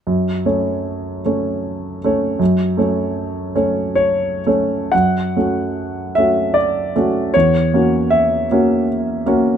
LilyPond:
\new Staff \with { instrumentName = "Grand piano" } { \time 3/4 \key fis \minor \tempo 4 = 76 << { r2. | r2 cis''4 | fis''4. e''8 d''4 | cis''4 e''4 r4 | } \\ { fis,8 <a cis' cis''>4 <a cis' cis''>4 <a cis' cis''>8 | fis,8 <a cis' cis''>4 <a cis' cis''>4 <a cis' cis''>8 | fis,8 <a cis' fis'>4 <a cis' fis'>4 <a cis' fis'>8 | e,8 <ais cis' fis'>4 <ais cis' fis'>4 <ais cis' fis'>8 | } >> }